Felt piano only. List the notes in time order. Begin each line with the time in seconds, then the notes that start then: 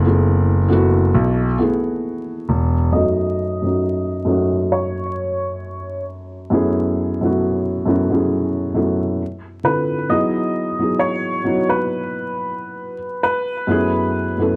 Already playing: A3 B3 E4 G#4
0.04 A3 B3 E4 G#4
0.68 A3 B3 E4 F#4
1.58 A3 B3 E4 G#4
2.92 F#2 A3 C#4 D#4 F#4
3.62 F#2 A3 C#4 D#4
3.66 F#4
4.25 F#2 A3 C#4 D#4 F#4
6.50 F#2 A3 B3 C#4 E4
6.54 G#4
7.21 F#2 A3 B3 C#4 E4 F#4
7.86 F#2 A3 B3 C#4 E4 F#4
8.10 F#2 A3 B3 C#4 E4
8.14 G#4
8.74 F#2 A3 B3 C#4 E4
8.79 F#4
9.63 D3 C4 E4 F4 A4
10.09 F#3 B3 D#4 E4
10.13 G#4
10.79 F#3 B3 D#4 E4
10.83 G#4
11.44 F#3 B3 D#4 E4 F#4
13.67 F#2 A3 B3 C#4 E4
13.71 G#4
14.38 F#2 A3 B3 C#4 E4 A4